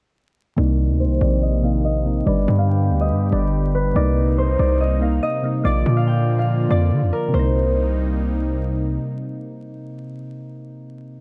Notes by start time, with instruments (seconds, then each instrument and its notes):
0.56 808-style bass C2, synth keys C3 A#3 D#4, analog synth pad D#3 A#3 C4 G4, harp D5
0.90 808-style bass D2
1.00 harp C5
1.05 808-style bass C2
1.21 808-style bass A#1, harp D5
1.42 harp D#5
1.62 synth keys C3 A#3 D#4, harp F5
1.85 harp D#5
2.04 synth keys C3 A#3 D#4
2.26 808-style bass G1, analog synth pad D3 G3 B3 G4, synth keys G3 D4 B4, harp D5
2.48 808-style bass G2
2.58 harp F5
2.69 harp G5
2.90 808-style bass D2
3.01 harp D#5
3.11 808-style bass G2
3.31 808-style bass G1, synth keys G3 D4 B4, harp D5
3.75 harp B4
3.94 808-style bass C2, synth keys C3 A#3 D#4, analog synth pad C3 A#3 D#4, harp D5
4.38 harp C5
4.59 808-style bass C2, harp D5
4.80 harp D#5
5.00 synth keys C3 A#3 D#4, harp F5
5.23 harp D#5
5.43 synth keys C3 A#3 D#4
5.64 808-style bass A#1, analog synth pad D3 F3 A#3 F4, synth keys A#3 F4 D5, harp D5
5.86 808-style bass A#2
5.96 harp F5
6.07 harp G5
6.39 harp F5
6.69 808-style bass F2, synth keys A#3 F4 D5, harp D5
6.92 808-style bass D3
7.02 808-style bass F2
7.13 harp A#4
7.28 synth keys C3
7.34 808-style bass C2, analog synth pad C3 G3 A#3 D#4, synth keys A#3, harp C5
7.39 synth keys D#4